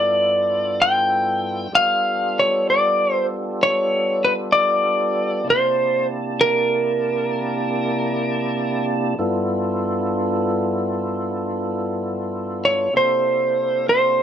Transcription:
Already playing: tonewheel organ G2 B3 D4 E4 F4 A4, electric slide guitar D5
0.82 electric slide guitar G5
1.72 tonewheel organ G3 B3 D4 F4 G4 A4, electric slide guitar F5
2.39 electric slide guitar C#5
2.70 electric slide guitar D5
3.13 electric slide guitar C5
3.63 electric slide guitar C#5
4.25 electric slide guitar B4
4.52 electric slide guitar D5
5.44 tonewheel organ C3 A#3 D4 E4 G4 A5
5.50 electric slide guitar C5
6.41 electric slide guitar A#4
9.19 tonewheel organ G2 B3 D4 E4 F4 A4
12.65 electric slide guitar C#5
12.93 tonewheel organ C3 A#3 D4 E4 G4 A4, electric slide guitar C5
13.89 electric slide guitar C5

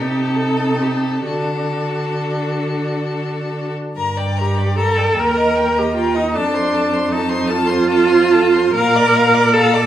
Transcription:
Already playing: cello C3, viola D#4, violin G4 A4
0.36 violin A4
0.82 violin G4
1.26 cello D3, viola D4, violin F#4 A4
3.96 cello G2, violin A#4 A#5
4.17 violin D5 G5
4.36 viola G4, violin A#4 A#5
4.55 violin D5 G5
4.75 viola A4, violin A#4 A#5
4.96 violin D5 G5
5.16 cello D#2, violin A#4 G5, viola A#4
5.34 violin D#5 A#5
5.56 violin A#4 G5
5.75 viola G4, violin D#5 A#5
5.95 viola F4, violin A#4 G5
6.14 viola D#4, violin D#5 A#5
6.34 cello F2, viola D4, violin A4 A5
6.54 violin C5 C6
6.73 violin A4 A5
6.92 violin C5 C6
7.11 viola D#4, violin A4 A5
7.29 violin C5 C6
7.48 viola F4, violin A4 A5
7.67 violin C5 C6
7.89 violin A4 A5
8.08 violin C5 C6
8.31 violin A4 A5
8.54 violin C5 C6
8.74 cello A#2, viola A#4, violin F5 A#5
8.95 violin D5 D6
9.14 violin F5 A#5
9.34 violin D5 D6
9.53 viola A4, violin F5 A#5
9.74 violin D5 D6

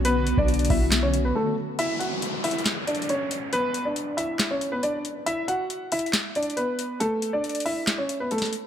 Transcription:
Already playing: 808-style bass B1, ambient pad D3 B3 F#4
0.05 grand piano B3 B4, closed hi-hat
0.27 closed hi-hat
0.38 808-style bass B1, grand piano D4 D5, kick
0.48 closed hi-hat
0.54 closed hi-hat
0.59 closed hi-hat
0.65 closed hi-hat
0.70 808-style bass B1, grand piano E4 E5, kick, open hi-hat
0.92 snare, clap, closed hi-hat
1.03 grand piano C#4 C#5
1.14 closed hi-hat
1.25 grand piano B3 B4
1.35 grand piano A3 A4
1.79 grand piano E4 E5, closed hi-hat, downlifter
1.99 grand piano F#4 F#5, closed hi-hat
2.22 closed hi-hat
2.44 grand piano E4 E5, closed hi-hat, open hi-hat
2.51 closed hi-hat
2.58 closed hi-hat
2.66 snare, clap, closed hi-hat
2.87 grand piano D4 D5, closed hi-hat
2.95 closed hi-hat
3.02 closed hi-hat
3.09 grand piano C#4 C#5, closed hi-hat
3.31 closed hi-hat
3.53 grand piano B3 B4, closed hi-hat
3.74 closed hi-hat
3.85 grand piano D4 D5
3.96 closed hi-hat
4.17 grand piano E4 E5, closed hi-hat
4.40 snare, clap, closed hi-hat
4.51 grand piano C#4 C#5
4.61 closed hi-hat
4.72 grand piano B3 B4
4.83 grand piano D4 D5, closed hi-hat
5.05 closed hi-hat
5.26 grand piano E4 E5, closed hi-hat
5.48 grand piano F#4 F#5, closed hi-hat
5.70 closed hi-hat
5.92 grand piano E4 E5, closed hi-hat, open hi-hat
5.99 closed hi-hat
6.06 closed hi-hat
6.13 snare, clap, closed hi-hat
6.35 grand piano D4 D5, closed hi-hat
6.43 closed hi-hat
6.50 closed hi-hat
6.57 grand piano B3 B4, closed hi-hat
6.79 closed hi-hat
7.00 grand piano A3 A4, closed hi-hat
7.22 closed hi-hat
7.33 grand piano D4 D5
7.44 closed hi-hat
7.49 closed hi-hat
7.55 closed hi-hat
7.60 closed hi-hat
7.66 grand piano E4 E5, open hi-hat
7.87 snare, clap, closed hi-hat
7.98 grand piano C#4 C#5
8.09 closed hi-hat
8.20 grand piano B3 B4
8.31 grand piano A3 A4, closed hi-hat
8.38 snare, closed hi-hat
8.45 closed hi-hat
8.53 closed hi-hat

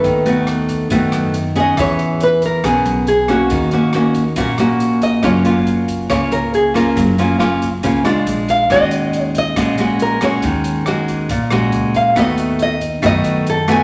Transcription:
Already playing: nylon-string guitar A3 B3 F#4 B4
0.04 upright bass D#2, nylon-string guitar D#3, kick, closed hi-hat
0.26 nylon-string guitar A3 B3 F#4, closed hi-hat
0.47 cross-stick, closed hi-hat
0.69 kick, closed hi-hat
0.90 upright bass F#2, nylon-string guitar D#3 A3 B3 F#4, kick, closed hi-hat
1.12 upright bass F#2, cross-stick, closed hi-hat
1.34 closed hi-hat
1.55 nylon-string guitar B3 C#4 G#4, kick, closed hi-hat
1.60 nylon-string guitar D#5
1.77 upright bass E2, nylon-string guitar E3 C#5, kick, cross-stick, closed hi-hat
1.99 closed hi-hat
2.20 nylon-string guitar B4, closed hi-hat
2.42 nylon-string guitar A#4, kick, closed hi-hat
2.63 upright bass B1, nylon-string guitar B2 B3 C#4 G#4, kick, cross-stick, closed hi-hat
2.85 upright bass B1, closed hi-hat
3.07 nylon-string guitar G#4, closed hi-hat
3.28 nylon-string guitar A#3 C#4 F#4, kick, cross-stick, closed hi-hat
3.50 upright bass D#2, nylon-string guitar D#3, kick, closed hi-hat
3.71 nylon-string guitar A#3 C#4 F#4, closed hi-hat
3.93 nylon-string guitar A#3 C#4 F#4, cross-stick, closed hi-hat
4.15 kick, closed hi-hat
4.36 upright bass A#1, nylon-string guitar A#2 A#3 C#4 F#4, kick, closed hi-hat
4.58 upright bass A#1, nylon-string guitar A#3 C#4 F#4, cross-stick, closed hi-hat
4.80 closed hi-hat
5.02 nylon-string guitar D#5, kick, closed hi-hat
5.23 upright bass F#1, nylon-string guitar F#3 A#3 C#4 F4 C#5, kick, cross-stick, closed hi-hat
5.45 nylon-string guitar A#3 C#4 F4, closed hi-hat
5.67 closed hi-hat
5.88 kick, closed hi-hat
6.10 upright bass C#2, nylon-string guitar C#3 A#3 C#4 F4 C#5, kick, cross-stick, closed hi-hat
6.31 upright bass C#2, nylon-string guitar A#4, closed hi-hat
6.54 nylon-string guitar G#4, closed hi-hat
6.74 nylon-string guitar A#3 C#4 F4 A#4, kick, cross-stick, closed hi-hat
6.96 upright bass F#1, nylon-string guitar F#3, kick, closed hi-hat
7.18 nylon-string guitar A#3 C#4 F4, closed hi-hat
7.39 nylon-string guitar A#3 C#4 F4, cross-stick, closed hi-hat
7.62 kick, closed hi-hat
7.83 upright bass C#2, nylon-string guitar C#3 A#3 C#4 F4, kick, closed hi-hat
8.04 upright bass C#2, nylon-string guitar G#3 D4 F4, cross-stick, closed hi-hat
8.26 upright bass A#1, closed hi-hat
8.48 nylon-string guitar F5, kick, closed hi-hat
8.70 upright bass D#2, nylon-string guitar D#3 G#3 C#4 F#4 D#5, kick, cross-stick, closed hi-hat
8.91 closed hi-hat
9.13 closed hi-hat
9.22 nylon-string guitar C#5
9.35 nylon-string guitar D#5, kick, closed hi-hat
9.56 upright bass A#1, nylon-string guitar A#2 G#3 C#4 F#4, kick, cross-stick, closed hi-hat
9.78 upright bass A#1, nylon-string guitar G#3 C#4 F#4, closed hi-hat
9.99 nylon-string guitar A#4, closed hi-hat
10.21 nylon-string guitar G#3 C#4 F#4 C#5, kick, cross-stick, closed hi-hat
10.42 upright bass D#2, nylon-string guitar D#3, kick, closed hi-hat
10.64 closed hi-hat
10.86 nylon-string guitar G#3 C#4 F#4, cross-stick, closed hi-hat
11.08 kick, closed hi-hat
11.29 upright bass A#1, nylon-string guitar A#2, kick, closed hi-hat
11.50 upright bass A#1, nylon-string guitar G#3 C#4 F#4, cross-stick, closed hi-hat
11.72 upright bass C#2, closed hi-hat
11.94 upright bass D#2, nylon-string guitar F5, kick, closed hi-hat
12.15 upright bass D#2, nylon-string guitar D#3 A3 B3 F#4, kick, cross-stick, closed hi-hat
12.19 nylon-string guitar D#5
12.37 closed hi-hat
12.59 nylon-string guitar D#5, closed hi-hat
12.81 kick, closed hi-hat
13.02 upright bass F#2, nylon-string guitar D#3 A3 B3 F#4 D#5, kick, cross-stick, closed hi-hat
13.24 upright bass F#2, closed hi-hat
13.46 nylon-string guitar A4, closed hi-hat
13.68 nylon-string guitar A3 B3 F#4 G#5, kick, cross-stick, closed hi-hat

